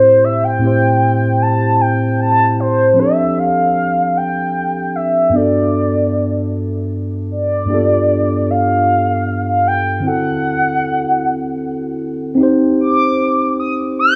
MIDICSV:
0, 0, Header, 1, 3, 480
1, 0, Start_track
1, 0, Key_signature, 1, "major"
1, 0, Tempo, 784314
1, 381, Time_signature, 6, 3, 24, 8
1, 8663, End_track
2, 0, Start_track
2, 0, Title_t, "Soft synth lead"
2, 0, Program_c, 0, 80
2, 0, Note_on_c, 0, 72, 86
2, 149, Note_on_c, 0, 76, 88
2, 158, Note_off_c, 0, 72, 0
2, 269, Note_on_c, 0, 79, 107
2, 278, Note_off_c, 0, 76, 0
2, 869, Note_on_c, 0, 81, 109
2, 879, Note_off_c, 0, 79, 0
2, 1109, Note_on_c, 0, 79, 94
2, 1118, Note_off_c, 0, 81, 0
2, 1345, Note_off_c, 0, 79, 0
2, 1350, Note_on_c, 0, 81, 104
2, 1569, Note_off_c, 0, 81, 0
2, 1591, Note_on_c, 0, 72, 87
2, 1833, Note_on_c, 0, 76, 92
2, 1843, Note_off_c, 0, 72, 0
2, 2074, Note_on_c, 0, 77, 112
2, 2083, Note_off_c, 0, 76, 0
2, 2554, Note_on_c, 0, 79, 99
2, 2563, Note_off_c, 0, 77, 0
2, 3033, Note_on_c, 0, 76, 87
2, 3042, Note_off_c, 0, 79, 0
2, 3277, Note_on_c, 0, 74, 88
2, 3286, Note_off_c, 0, 76, 0
2, 4229, Note_off_c, 0, 74, 0
2, 4476, Note_on_c, 0, 74, 97
2, 5205, Note_on_c, 0, 77, 102
2, 5214, Note_off_c, 0, 74, 0
2, 5793, Note_off_c, 0, 77, 0
2, 5806, Note_on_c, 0, 77, 94
2, 5920, Note_on_c, 0, 79, 95
2, 5929, Note_off_c, 0, 77, 0
2, 6151, Note_off_c, 0, 79, 0
2, 6161, Note_on_c, 0, 78, 108
2, 7326, Note_off_c, 0, 78, 0
2, 7836, Note_on_c, 0, 86, 108
2, 8284, Note_off_c, 0, 86, 0
2, 8321, Note_on_c, 0, 87, 92
2, 8406, Note_off_c, 0, 87, 0
2, 8563, Note_on_c, 0, 91, 121
2, 8663, Note_off_c, 0, 91, 0
2, 8663, End_track
3, 0, Start_track
3, 0, Title_t, "Tine electric piano"
3, 0, Program_c, 1, 4
3, 0, Control_c, 1, 64, 127
3, 0, Note_on_c, 1, 45, 72
3, 0, Note_on_c, 1, 60, 68
3, 0, Note_on_c, 1, 64, 72
3, 0, Note_on_c, 1, 67, 72
3, 0, Note_on_c, 1, 72, 79
3, 344, Note_off_c, 1, 45, 0
3, 350, Note_off_c, 1, 60, 0
3, 357, Note_off_c, 1, 64, 0
3, 358, Note_on_c, 1, 45, 65
3, 363, Note_off_c, 1, 67, 0
3, 370, Note_off_c, 1, 72, 0
3, 372, Note_on_c, 1, 60, 56
3, 382, Note_on_c, 1, 64, 57
3, 397, Note_on_c, 1, 67, 57
3, 411, Note_on_c, 1, 72, 66
3, 1785, Note_off_c, 1, 45, 0
3, 1792, Note_off_c, 1, 60, 0
3, 1797, Note_off_c, 1, 64, 0
3, 1798, Note_on_c, 1, 53, 55
3, 1805, Note_off_c, 1, 67, 0
3, 1810, Note_on_c, 1, 60, 50
3, 1811, Note_off_c, 1, 72, 0
3, 1824, Note_on_c, 1, 62, 49
3, 1828, Control_c, 1, 64, 0
3, 1836, Note_on_c, 1, 67, 52
3, 1848, Note_on_c, 1, 69, 66
3, 1933, Control_c, 1, 64, 127
3, 3225, Note_off_c, 1, 53, 0
3, 3231, Note_off_c, 1, 60, 0
3, 3238, Note_off_c, 1, 62, 0
3, 3240, Note_on_c, 1, 43, 59
3, 3244, Note_off_c, 1, 67, 0
3, 3250, Note_off_c, 1, 69, 0
3, 3253, Note_on_c, 1, 59, 49
3, 3267, Note_on_c, 1, 62, 53
3, 3270, Control_c, 1, 64, 0
3, 3278, Note_on_c, 1, 66, 48
3, 3291, Note_on_c, 1, 69, 64
3, 3387, Control_c, 1, 64, 127
3, 4666, Note_off_c, 1, 43, 0
3, 4672, Note_off_c, 1, 59, 0
3, 4679, Note_off_c, 1, 62, 0
3, 4683, Note_on_c, 1, 43, 57
3, 4685, Note_off_c, 1, 66, 0
3, 4692, Note_off_c, 1, 69, 0
3, 4694, Note_on_c, 1, 58, 44
3, 4704, Note_on_c, 1, 62, 56
3, 4710, Control_c, 1, 64, 0
3, 4714, Note_on_c, 1, 67, 54
3, 4725, Note_on_c, 1, 65, 56
3, 4735, Note_on_c, 1, 59, 50
3, 4736, Note_on_c, 1, 69, 69
3, 4737, Note_off_c, 1, 58, 0
3, 4809, Control_c, 1, 64, 127
3, 6107, Note_off_c, 1, 43, 0
3, 6118, Note_off_c, 1, 62, 0
3, 6120, Note_on_c, 1, 50, 57
3, 6123, Note_off_c, 1, 67, 0
3, 6129, Note_off_c, 1, 65, 0
3, 6132, Note_on_c, 1, 60, 56
3, 6134, Note_off_c, 1, 59, 0
3, 6134, Note_off_c, 1, 69, 0
3, 6143, Note_on_c, 1, 64, 57
3, 6149, Control_c, 1, 64, 0
3, 6158, Note_on_c, 1, 66, 54
3, 6170, Note_on_c, 1, 69, 72
3, 6264, Control_c, 1, 64, 127
3, 7546, Note_off_c, 1, 50, 0
3, 7550, Note_off_c, 1, 60, 0
3, 7558, Note_off_c, 1, 64, 0
3, 7558, Note_on_c, 1, 60, 77
3, 7565, Note_off_c, 1, 66, 0
3, 7571, Note_off_c, 1, 69, 0
3, 7573, Note_on_c, 1, 63, 71
3, 7588, Control_c, 1, 64, 0
3, 7593, Note_on_c, 1, 67, 66
3, 7608, Note_on_c, 1, 72, 79
3, 7707, Control_c, 1, 64, 127
3, 8663, Note_off_c, 1, 60, 0
3, 8663, Note_off_c, 1, 63, 0
3, 8663, Note_off_c, 1, 67, 0
3, 8663, Note_off_c, 1, 72, 0
3, 8663, End_track
0, 0, End_of_file